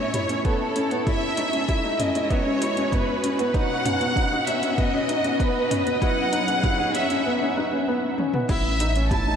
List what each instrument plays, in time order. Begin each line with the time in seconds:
Already playing: string section A2 A3 E4 C#5, violin section C#5
0.14 felt piano E4, closed hi-hat, mid tom
0.29 felt piano C#4, closed hi-hat
0.45 felt piano B3, violin section A4, kick, closed hi-hat
0.76 felt piano C#4, closed hi-hat
0.91 felt piano B3, closed hi-hat
1.06 string section G#3, felt piano E4, violin section E5, kick, closed hi-hat, mid tom
1.37 felt piano D#4, closed hi-hat
1.45 string section F#4
1.53 felt piano C#4, closed hi-hat
1.69 felt piano E4, kick, closed hi-hat
1.84 felt piano D#4
1.99 felt piano C#4, violin section D#5, closed hi-hat, mid tom
2.15 felt piano C#4, string section B4, closed hi-hat
2.30 felt piano B3, violin section C#5, kick, closed hi-hat
2.46 felt piano C#4
2.62 felt piano E4, closed hi-hat
2.77 felt piano C#4, closed hi-hat
2.92 felt piano B3, violin section B4, kick, closed hi-hat, mid tom
3.24 felt piano C#4, closed hi-hat
3.39 felt piano B3, closed hi-hat
3.54 string section B2, felt piano D#4, violin section F#5, kick, closed hi-hat
3.81 string section B3
3.85 felt piano C#4, closed hi-hat, mid tom
4.01 felt piano B3, closed hi-hat
4.16 felt piano D#4, kick, closed hi-hat
4.32 felt piano D#4
4.47 felt piano C#4, violin section E5, closed hi-hat
4.63 felt piano C#4, string section D#5, closed hi-hat
4.78 felt piano B3, violin section D#5, kick, closed hi-hat, mid tom
4.94 felt piano C#4
5.09 felt piano D#4, closed hi-hat
5.24 felt piano C#4, closed hi-hat
5.39 felt piano B3, violin section B4, kick, closed hi-hat
5.70 felt piano C#4, closed hi-hat, mid tom
5.86 felt piano B3, closed hi-hat
6.02 string section F#3, felt piano E4, violin section F#5, kick, closed hi-hat
6.33 felt piano D#4, closed hi-hat
6.43 string section G#4
6.48 felt piano C#4, closed hi-hat
6.62 string section C#4, felt piano E4, kick, closed hi-hat, mid tom
6.80 felt piano D#4
6.95 felt piano C#4, violin section E5, closed hi-hat
7.09 felt piano C#4, string section A4, closed hi-hat
7.26 felt piano B3
7.42 felt piano C#4
7.57 felt piano D#4
7.73 felt piano C#4
7.88 felt piano B3
8.18 felt piano C#4, high tom
8.34 felt piano B3, mid tom
8.49 sub bass A1, string section A3, felt piano E4, violin section E5, kick, closed hi-hat, crash
8.73 string section C#5
8.80 felt piano D#4, closed hi-hat
8.96 felt piano C#4, closed hi-hat
9.11 felt piano E4, violin section A5, kick, closed hi-hat, mid tom
9.27 felt piano D#4